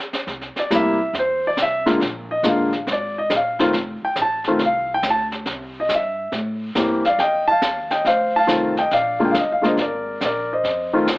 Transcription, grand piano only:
0.59 0.72 D5 medium
0.70 0.97 C3 medium
0.70 0.97 G3 medium
0.70 0.97 A#3 medium
0.70 0.97 E4 medium
0.75 1.14 E5 medium
1.19 1.45 C5 medium
1.47 1.59 D5 medium
1.62 1.88 E5 medium
1.86 1.99 D3 medium
1.86 1.99 G#3 medium
1.86 1.99 A#3 medium
1.86 1.99 F4 medium
2.31 2.44 D#5 medium
2.44 2.70 D3 medium
2.44 2.70 G#3 medium
2.44 2.70 A#3 medium
2.44 2.70 F4 medium
2.48 2.86 F5 medium
2.87 2.90 C#5 soft
2.92 3.18 D5 medium
3.18 3.31 D#5 medium
3.36 3.61 F5 medium
3.60 3.72 D#3 medium
3.60 3.72 A3 medium
3.60 3.72 C4 medium
3.60 3.73 F4 medium
4.05 4.17 G5 medium
4.22 4.60 A5 loud
4.47 4.59 D#3 medium
4.47 4.59 A3 medium
4.47 4.60 C4 medium
4.47 4.60 F4 medium
4.65 4.91 F5 medium
4.94 5.06 G5 medium
5.10 5.25 A5 medium
5.80 5.92 D#5 medium
5.95 6.33 E5 medium
6.76 7.02 E3 medium
6.76 7.02 A#3 medium
6.76 7.02 C4 medium
6.76 7.02 G4 medium
7.06 7.20 D5 medium
7.06 7.20 F5 medium
7.20 7.47 D#5 medium
7.20 7.46 G5 medium
7.48 7.90 F5 medium
7.48 7.92 A5 loud
7.91 8.05 D#5 medium
7.91 8.04 G5 medium
8.06 8.33 C5 medium
8.06 8.33 F5 medium
8.36 8.77 F5 medium
8.36 8.80 A5 loud
8.47 8.74 D#3 medium
8.47 8.74 A3 medium
8.47 8.74 C4 medium
8.47 8.74 F4 medium
8.79 8.92 D#5 medium
8.79 8.93 G5 medium
8.93 9.24 D5 medium
8.93 9.23 F5 medium
9.20 9.33 D3 medium
9.20 9.33 G#3 medium
9.20 9.33 A#3 medium
9.20 9.33 F4 medium
9.25 9.31 G5 medium
9.31 9.39 F5 medium
9.39 9.52 D#5 medium
9.52 9.64 F5 medium
9.62 9.76 D3 medium
9.62 9.76 G#3 medium
9.62 9.76 A#3 medium
9.62 9.76 F4 medium
9.62 9.70 D#5 medium
9.66 9.71 C5 medium
9.81 10.20 A#4 medium
9.81 10.23 D5 medium
10.25 10.50 A#4 medium
10.25 10.53 D5 medium
10.53 10.92 C5 medium
10.53 10.92 D#5 medium
10.93 11.06 D#3 medium
10.93 11.06 A3 medium
10.93 11.06 C4 medium
10.93 11.07 F4 medium

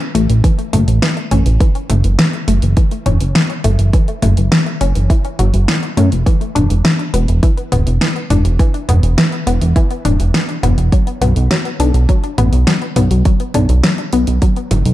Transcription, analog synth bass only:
0.15 0.27 A1 medium
0.30 0.42 A1 medium
0.73 0.86 F#1 medium
0.88 1.00 A1 medium
1.31 1.44 A1 loud
1.46 1.58 A1 medium
1.90 2.02 F#1 medium
2.04 2.17 F#1 medium
2.48 2.60 F#1 medium
2.63 2.75 F#1 medium
3.06 3.19 E1 medium
3.21 3.33 F#1 medium
3.65 3.77 F#1 loud
3.79 3.91 F#1 medium
4.23 4.35 F#1 medium
4.38 4.50 F#1 medium
4.81 4.93 F#1 loud
4.96 5.08 F#1 medium
5.39 5.52 F#1 loud
5.54 5.66 F#1 medium
5.97 6.10 F#2 loud
6.12 6.24 E1 medium
6.55 6.68 E1 medium
6.70 6.82 E1 medium
7.14 7.26 E1 loud
7.28 7.41 E1 medium
7.72 7.84 D1 medium
7.87 7.99 E1 medium
8.30 8.43 E1 loud
8.45 8.57 E1 medium
8.89 9.01 E1 medium
9.03 9.16 E1 medium
9.47 9.59 E1 loud
9.61 9.74 E1 medium
10.05 10.17 D1 medium
10.20 10.32 E1 medium
10.63 10.76 E1 loud
10.78 10.90 E1 medium
11.21 11.34 B1 loud
11.36 11.48 B1 medium
11.80 11.92 B1 loud
11.94 12.07 B1 medium
12.38 12.50 A1 medium
12.52 12.65 B1 medium
12.96 13.09 B1 loud
13.11 13.23 B1 medium
13.55 13.67 B1 medium
13.69 13.81 B1 medium
14.13 14.25 B1 medium
14.27 14.40 B1 medium
14.71 14.83 F#1 loud
14.86 14.94 B1 medium

